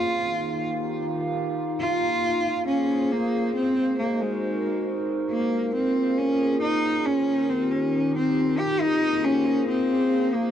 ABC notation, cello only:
X:1
M:4/4
L:1/8
Q:"Swing 16ths" 1/4=137
K:Bbm
V:1 name="Cello"
F3 z4 z | F4 D2 B,2 | C2 B, A,4 z | B,2 C2 D2 E2 |
D2 C D2 C2 =G | E2 D2 C3 B, |]